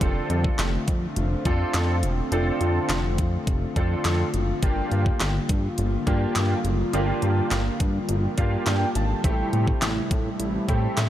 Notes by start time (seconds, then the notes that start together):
Already playing: D3
0.01 F1 A3 C4 D4 F4 A4, kick, closed hi-hat
0.30 F2, closed hi-hat
0.44 kick
0.59 F1, snare, clap, closed hi-hat
0.88 F2, kick, closed hi-hat
1.16 F1, closed hi-hat
1.45 F2 C4 D4 F4 A4, kick, closed hi-hat
1.74 F2, snare, clap, closed hi-hat
2.03 E1, closed hi-hat
2.32 F1 C4 D4 F4 A4, closed hi-hat
2.61 F2, closed hi-hat
2.89 F1, snare, clap, closed hi-hat
3.18 F2, kick, closed hi-hat
3.47 F1, kick, closed hi-hat
3.76 F2 C4 D4 F4 A4, kick, closed hi-hat
4.05 F2, snare, clap, closed hi-hat
4.34 F#1, closed hi-hat
4.63 G1 G3 A#3 D4 F4 G4, kick, closed hi-hat
4.92 G2, closed hi-hat
5.06 kick
5.20 G1, snare, clap, closed hi-hat
5.49 G2, kick, closed hi-hat
5.78 G1, closed hi-hat
6.07 G2 A#3 D4 F4 G4, kick, closed hi-hat
6.36 G2, snare, clap, closed hi-hat
6.65 F#1, closed hi-hat
6.93 G1 A#3 D4 F4 G4, closed hi-hat
7.22 G2, closed hi-hat
7.51 G1, snare, clap, closed hi-hat
7.80 G2, kick, closed hi-hat
8.09 G1, closed hi-hat
8.37 G2 A#3 D4 F4 G4 F5, kick, closed hi-hat
8.66 G2 G5, snare, clap, closed hi-hat
8.95 G#1 A5, closed hi-hat
9.24 A1 C3 A3 C4 E4 G4, kick, closed hi-hat
9.53 A2, closed hi-hat
9.68 kick
9.82 A1, snare, clap, closed hi-hat
10.11 A2, kick, closed hi-hat
10.40 A1, closed hi-hat
10.68 A2 A3 C4 E4 G4, kick, closed hi-hat
10.97 A2, snare, clap, closed hi-hat